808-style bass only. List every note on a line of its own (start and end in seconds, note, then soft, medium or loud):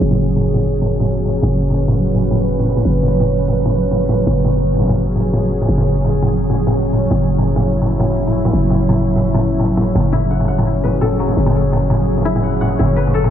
0.01 1.41 F#1 medium
1.43 2.83 F#1 medium
2.85 4.25 F#1 medium
4.27 5.67 F#1 medium
5.69 7.09 F#1 medium
7.11 8.51 F#1 medium
8.53 9.93 F#1 medium
9.95 11.35 F#1 medium
11.37 12.77 F#1 medium
12.79 13.30 F#1 medium